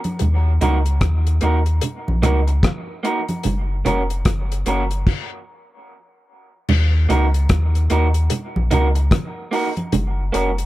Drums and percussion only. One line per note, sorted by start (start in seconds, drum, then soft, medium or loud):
0.04 closed hi-hat soft
0.04 high conga medium
0.19 closed hi-hat medium
0.19 low conga medium
0.61 closed hi-hat medium
0.61 low conga medium
0.86 closed hi-hat soft
1.01 kick loud
1.01 cross-stick loud
1.01 closed hi-hat medium
1.01 high conga soft
1.27 closed hi-hat medium
1.41 closed hi-hat medium
1.66 closed hi-hat soft
1.81 closed hi-hat medium
1.81 low conga medium
2.08 high conga medium
2.23 cross-stick medium
2.23 closed hi-hat medium
2.23 low conga medium
2.48 closed hi-hat soft
2.63 kick loud
2.63 cross-stick loud
2.63 closed hi-hat medium
2.63 high conga medium
3.05 closed hi-hat medium
3.29 closed hi-hat soft
3.29 high conga medium
3.43 closed hi-hat medium
3.43 low conga medium
3.85 closed hi-hat medium
3.85 low conga medium
4.10 closed hi-hat medium
4.25 kick loud
4.25 cross-stick loud
4.25 closed hi-hat loud
4.25 high conga soft
4.52 closed hi-hat medium
4.66 closed hi-hat medium
4.91 closed hi-hat medium
5.07 kick loud
5.07 crash medium
6.68 crash medium
6.68 low conga medium
7.10 closed hi-hat medium
7.10 low conga medium
7.34 closed hi-hat soft
7.49 kick loud
7.49 cross-stick loud
7.49 closed hi-hat loud
7.49 high conga soft
7.75 closed hi-hat medium
7.90 closed hi-hat medium
8.14 closed hi-hat medium
8.30 closed hi-hat loud
8.30 low conga medium
8.56 high conga medium
8.71 closed hi-hat medium
8.71 low conga medium
8.95 closed hi-hat medium
9.11 kick loud
9.11 cross-stick loud
9.11 closed hi-hat medium
9.11 high conga medium
9.53 open hi-hat medium
9.77 closed hi-hat soft
9.77 high conga medium
9.92 closed hi-hat medium
9.92 low conga medium
10.34 closed hi-hat medium
10.58 closed hi-hat medium